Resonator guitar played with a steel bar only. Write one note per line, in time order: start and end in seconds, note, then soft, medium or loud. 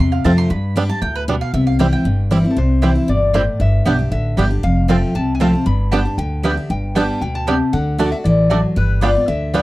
2.50 2.57 A4 medium
2.58 3.11 C5 medium
3.09 3.61 D5 medium
3.61 4.10 E5 medium
4.12 4.48 E5 medium
4.64 4.89 F5 loud
4.90 5.15 G5 loud
5.15 5.34 A5 medium
5.35 5.40 G#5 medium
5.41 5.65 A5 medium
5.66 5.93 B5 medium
5.92 6.18 A5 loud
6.18 6.42 G5 medium
6.45 6.71 E5 medium
6.70 6.94 G5 medium
6.96 7.20 A5 loud
7.21 7.35 G5 medium
7.35 7.74 A5 medium
7.73 8.11 F#5 loud
8.12 8.17 E5 medium
8.24 8.48 D5 medium
8.77 9.01 B4 medium
9.03 9.26 D5 loud
9.28 9.55 E5 loud
9.54 9.62 D5 medium